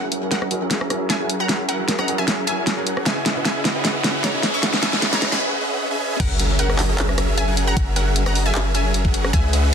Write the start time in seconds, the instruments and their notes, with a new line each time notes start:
Already playing: 808-style bass F#1, grand piano F#3 C#4 E4 G#4 A#4, riser
0.12 supersaw synth F#3 C#4 G#4 A#4 E5, closed hi-hat
0.21 grand piano F#3 C#4 E4 G#4 A#4
0.31 synth pluck A#4 F#5, snare, closed hi-hat
0.42 supersaw synth F#3 C#4 G#4 A#4 D#5, cross-stick
0.50 grand piano F#3 C#4 E4 G#4 A#4, closed hi-hat
0.61 supersaw synth F#3 C#4 G#4 A#4 E5
0.71 snare, closed hi-hat
0.81 cross-stick
0.89 grand piano F#3 C#4 E4 G#4 A#4, supersaw synth F#3 C#4 G#4 A#4 E5, cross-stick, closed hi-hat
1.10 synth pluck E5 G#5, snare, closed hi-hat
1.19 grand piano F#3 C#4 E4 G#4 A#4, supersaw synth F#3 C#4 G#4 A#4 F#5
1.29 closed hi-hat
1.40 synth pluck F#5 A#5
1.48 808-style bass F#1, grand piano F#3 C#4 E4 G#4 A#4, supersaw synth F#3 C#4 G#4 A#4 E5, snare, closed hi-hat
1.69 supersaw synth F#3 C#4 G#4 A#4 E5, synth pluck A#4 F#5, closed hi-hat
1.78 grand piano F#3 C#4 E4 G#4 A#4
1.88 snare, closed hi-hat
1.99 supersaw synth F#3 C#4 G#4 A#4 D#5, synth pluck F#5 A#5, cross-stick
2.07 grand piano F#3 C#4 E4 G#4 A#4, closed hi-hat
2.18 supersaw synth F#3 C#4 G#4 A#4 E5, synth pluck E5 G#5
2.28 snare, closed hi-hat
2.46 grand piano F#3 C#4 E4 G#4 A#4, supersaw synth F#3 C#4 G#4 A#4 E5, synth pluck E5 G#5, closed hi-hat
2.67 snare, closed hi-hat
2.77 grand piano F#3 C#4 E4 G#4 A#4, supersaw synth F#3 C#4 G#4 A#4 F#5
2.87 closed hi-hat
2.97 cross-stick
3.05 808-style bass C#2, grand piano C#3 C#4 D#4 E4 F#4 B4, supersaw synth C#4 G#4 B4 D#5 E5 F#5, synth pluck E5 G#5, snare, closed hi-hat
3.25 supersaw synth C#4 G#4 B4 D#5 E5 F#5, snare, closed hi-hat
3.35 grand piano C#3 C#4 D#4 E4 F#4 B4
3.45 synth pluck E5 G#5, snare, closed hi-hat
3.55 supersaw synth C#4 G#4 B4 D#5 E5 F#5
3.64 grand piano C#3 C#4 D#4 E4 F#4 B4, snare, closed hi-hat
3.75 supersaw synth C#4 G#4 B4 D#5 E5 F#5
3.85 snare, closed hi-hat
4.03 grand piano C#3 C#4 D#4 E4 F#4 B4, supersaw synth C#4 G#4 B4 D#5 E5 F#5, snare, closed hi-hat
4.24 synth pluck C#5 A#5, snare, closed hi-hat
4.33 grand piano C#3 C#4 D#4 E4 F#4 B4, supersaw synth C#4 G#4 B4 D#5 E5 G#5
4.43 snare, closed hi-hat
4.54 synth pluck E5 C#6
4.62 808-style bass C#2, grand piano C#3 C#4 D#4 E4 F#4 B4, supersaw synth C#4 G#4 B4 D#5 E5 F#5, snare, closed hi-hat
4.73 snare
4.82 supersaw synth C#4 G#4 B4 D#5 E5 F#5, synth pluck E5 G#5, snare, closed hi-hat
4.92 grand piano C#3 C#4 D#4 E4 F#4 B4, snare
5.02 snare, closed hi-hat
5.13 supersaw synth C#4 G#4 B4 D#5 E5 F#5, synth pluck C#5 A#5, snare
5.20 grand piano C#3 C#4 D#4 E4 F#4 B4, snare, closed hi-hat
5.32 supersaw synth C#4 G#4 B4 D#5 E5 F#5, synth pluck G#5 B5, snare
5.61 supersaw synth C#4 G#4 B4 D#5 E5 F#5
5.91 supersaw synth C#4 G#4 B4 D#5 E5 G#5
6.20 808-style bass F#1, supersaw synth F#3 C#4 G#4 A#4 E5, synth pluck A#4 F#5, kick, closed hi-hat, crash, impact
6.39 supersaw synth F#3 C#4 G#4 A#4 E5, closed hi-hat
6.59 synth pluck A#4 F#5, closed hi-hat
6.69 supersaw synth F#3 C#4 G#4 A#4 D#5, cross-stick
6.79 clap, open hi-hat
6.89 supersaw synth F#3 C#4 G#4 A#4 E5
6.98 clap, closed hi-hat
7.09 cross-stick
7.18 supersaw synth F#3 C#4 G#4 A#4 E5, cross-stick, closed hi-hat
7.38 synth pluck E5 G#5, closed hi-hat
7.48 supersaw synth F#3 C#4 G#4 A#4 F#5
7.57 closed hi-hat
7.67 synth pluck F#5 A#5
7.76 808-style bass F#1, supersaw synth F#3 C#4 G#4 A#4 E5, kick, closed hi-hat
7.96 supersaw synth F#3 C#4 G#4 A#4 E5, synth pluck A#4 F#5, closed hi-hat
8.16 closed hi-hat
8.26 supersaw synth F#3 C#4 G#4 A#4 D#5, synth pluck F#5 A#5, cross-stick
8.35 open hi-hat
8.46 supersaw synth F#3 C#4 G#4 A#4 E5, synth pluck E5 G#5
8.55 clap, closed hi-hat
8.74 supersaw synth F#3 C#4 G#4 A#4 E5, synth pluck E5 G#5, closed hi-hat
8.94 closed hi-hat
9.05 supersaw synth F#3 C#4 G#4 A#4 F#5, kick
9.14 closed hi-hat
9.24 cross-stick
9.33 808-style bass C#2, supersaw synth C#4 G#4 B4 D#5 E5 F#5, synth pluck E5 G#5, kick, closed hi-hat
9.53 supersaw synth C#4 G#4 B4 D#5 E5 F#5, closed hi-hat